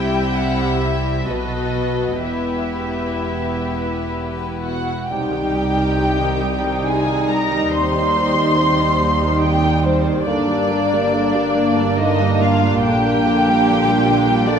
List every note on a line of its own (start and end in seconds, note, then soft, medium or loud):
0.00 1.24 C2 soft
0.00 1.24 C3 soft
0.00 1.28 G3 soft
0.00 1.24 E4 soft
0.00 1.24 G4 soft
0.00 1.27 E5 soft
0.00 0.36 G5 medium
0.36 0.81 F#5 medium
0.81 1.26 E5 soft
1.27 2.23 B1 soft
1.27 2.23 B2 soft
1.27 2.21 B3 soft
1.27 2.23 F#4 soft
1.27 2.23 A4 soft
1.27 2.20 B4 soft
1.27 2.23 D#5 soft
2.21 4.85 E1 soft
2.21 4.85 E2 soft
2.21 4.85 B3 soft
2.21 4.85 E4 soft
2.21 4.59 G4 soft
2.21 4.59 B4 soft
2.21 4.13 E5 soft
4.62 5.07 F#4 soft
4.62 5.06 F#5 soft
4.62 5.13 F#5 soft
5.09 7.69 C2 soft
5.09 5.31 C3 soft
5.09 10.24 G3 soft
5.09 10.23 D#4 soft
5.09 10.24 D#4 soft
5.09 6.86 G4 soft
5.09 6.86 G5 soft
5.33 5.55 D#3 soft
5.55 5.77 G3 soft
5.77 5.99 D#3 soft
5.98 6.20 C3 soft
6.19 6.41 D#3 soft
6.42 6.64 G3 soft
6.64 6.86 D#3 soft
6.84 7.08 C3 soft
6.84 7.29 G#4 soft
6.84 7.31 G#5 soft
6.84 7.30 G#5 medium
7.07 7.29 D#3 soft
7.29 7.51 G3 soft
7.29 7.73 A#4 medium
7.29 7.73 A#5 soft
7.29 7.73 A#5 medium
7.50 7.73 D#3 soft
7.71 10.23 D#2 soft
7.71 10.24 D#2 soft
7.71 7.93 C3 soft
7.71 9.43 C5 soft
7.71 9.42 C6 medium
7.71 9.40 C6 medium
7.94 8.16 D#3 soft
8.16 8.37 G3 soft
8.36 8.57 D#3 soft
8.57 8.79 C3 soft
8.78 9.00 D#3 soft
9.00 9.22 G3 soft
9.21 9.43 D#3 soft
9.41 9.65 C3 soft
9.41 9.85 G4 soft
9.41 9.84 G5 medium
9.41 9.87 G5 medium
9.65 9.86 D#3 soft
9.83 10.06 G3 soft
9.83 10.26 C4 soft
9.83 10.27 C5 medium
9.83 10.28 C5 soft
10.06 10.27 D#3 soft
10.26 12.80 G1 medium
10.26 12.80 G2 soft
10.26 10.47 D3 soft
10.26 14.59 A#3 soft
10.26 11.95 D4 soft
10.26 14.59 D4 soft
10.26 11.70 D5 medium
10.26 11.95 D5 medium
10.49 10.70 G3 soft
10.70 10.92 A#3 soft
10.92 11.13 G3 soft
11.13 11.34 D3 soft
11.34 11.56 G3 soft
11.55 11.77 A#3 soft
11.77 11.99 G3 soft
11.98 12.20 D3 soft
11.98 12.41 D#4 medium
11.98 12.41 D#5 medium
11.98 12.43 D#5 medium
12.20 12.41 G3 soft
12.41 12.63 A#3 soft
12.41 12.84 F4 medium
12.41 12.85 F5 medium
12.41 12.84 F5 medium
12.63 12.84 G3 soft
12.83 14.59 A#1 medium
12.83 14.59 A#2 medium
12.83 13.04 D3 soft
12.83 14.46 G4 medium
12.83 14.43 G5 medium
12.83 14.49 G5 medium
13.06 13.26 G3 soft
13.26 13.47 D3 soft
13.46 13.66 G3 soft
13.67 13.87 D3 medium
13.88 14.07 G3 soft
14.07 14.27 D3 medium
14.27 14.47 G3 medium
14.46 14.59 D3 medium
14.46 14.59 D4 medium
14.46 14.59 D5 medium